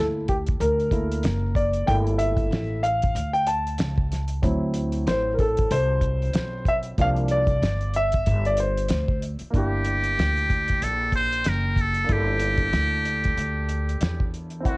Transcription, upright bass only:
Already playing: D2
0.60 D2
1.24 F#1
1.88 G1
2.51 A1
3.15 D2
3.79 C#2
4.43 D2
5.07 A1
5.71 C2
6.34 B1
6.98 C2
7.62 G1
8.27 G1
8.90 D2
9.41 muted upright bass stroke
9.54 G1
10.18 D2
10.82 A#1
11.46 F#1
12.09 G1
12.73 D2
13.37 D2
14.01 E2
14.65 D2

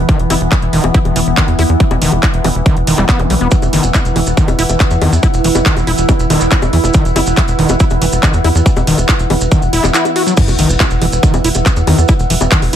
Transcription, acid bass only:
0.09 D#3
0.30 E4
0.52 E3
0.73 D#3
0.94 E4
1.16 E3
1.37 D#3
1.59 E4
1.80 E3
2.02 D#3
2.23 E4
2.44 E3
2.66 D#3
2.87 D#3
2.98 G3
3.09 B3
3.30 G3
3.41 B3
3.52 E3
3.73 D#3
3.94 E4
4.16 E3
4.37 D#3
4.59 E4
4.80 E3
5.02 D#3
5.23 E4
5.44 E3
5.66 D#3
5.87 E4
6.09 E3
6.30 D#3
6.52 E4
6.73 E3
6.94 D#3
7.16 E4
7.37 E3
7.59 D#3
7.80 E4
8.02 E3
8.23 D#3
8.44 E4
8.66 E3
8.87 D#3
9.09 E4
9.30 E3
9.52 D#3
9.73 E4
9.94 E4
10.16 F#4
10.27 F#3
10.37 E3
10.59 D#3
10.80 E4
11.02 E3
11.23 D#3
11.44 E4
11.66 E3
11.87 D#3
12.09 E4
12.30 E3
12.52 D#3

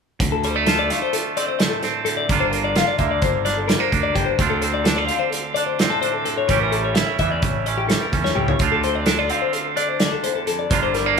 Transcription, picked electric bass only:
0.20 D2
2.30 G1
2.99 D2
3.22 G1
3.92 D2
4.16 G1
4.39 D2
6.49 A1
7.19 E2
7.42 A1
8.13 E2
8.36 C#2
8.60 D2
10.71 G1

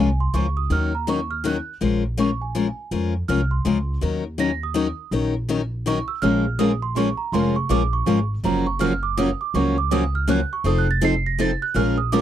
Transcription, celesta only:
0.00 G#5
0.20 C6
0.34 C#6
0.57 D#6
0.72 F6
0.95 A#5
1.09 C#6
1.31 F6
1.47 F#6
2.20 C#6
2.42 G#5
3.28 F6
3.51 C6
4.40 A#6
4.63 D#6
5.87 C#6
6.08 E6
6.22 F6
6.59 D#6
6.82 C6
6.97 C#6
7.17 A#5
7.33 C6
7.56 C#6
7.71 D6
7.93 C#6
8.45 A#5
8.67 C#6
8.81 F6
9.03 D6
9.18 D#6
9.41 D6
9.55 C#6
9.78 D6
9.92 D#6
10.15 F6
10.30 F#6
10.53 C#6
10.67 D#6
10.78 F#6
10.91 A6
11.05 C7
11.26 A#6
11.41 A6
11.62 F#6
11.76 F6
11.98 D#6
12.12 D6

